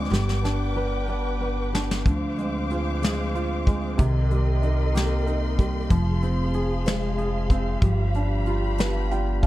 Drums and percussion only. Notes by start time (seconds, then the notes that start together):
0.13 snare
0.29 snare
0.45 snare
1.75 snare
1.91 snare
2.06 kick, closed hi-hat
2.38 closed hi-hat
2.71 closed hi-hat
3.02 snare, closed hi-hat
3.35 closed hi-hat
3.67 kick, closed hi-hat
3.98 kick, closed hi-hat
4.31 closed hi-hat
4.63 closed hi-hat
4.95 snare, closed hi-hat
5.27 closed hi-hat
5.59 kick, closed hi-hat
5.90 kick, closed hi-hat
6.22 closed hi-hat
6.54 closed hi-hat
6.86 snare, closed hi-hat
7.18 closed hi-hat
7.50 kick, closed hi-hat
7.82 kick, closed hi-hat
8.14 closed hi-hat
8.46 closed hi-hat
8.78 snare, closed hi-hat
9.11 closed hi-hat
9.43 kick, closed hi-hat